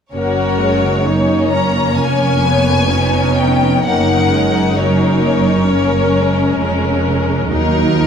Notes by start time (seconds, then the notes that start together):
0.13 F#1 F#2 A#3 C#4 F#4 A#4 C#5
0.60 G#3
1.06 A#3 C#4 D#4 C#5
1.51 C#4 A#5
1.97 F1 F2 C#4 C#5 G#5
2.44 B3
2.90 B3 C#4 D#4
3.38 G5
3.84 F#1 F#2 A#3 C#4 D#4 A#4 F#5
4.31 G#3
4.75 F#3 C#4 A#4 C#5
5.22 A#3
5.67 A#3 C#4 A#4
6.13 G#3
6.61 F1 F2 C#4 A#4
7.51 D#2 F#3 D#4 A#4
7.97 F3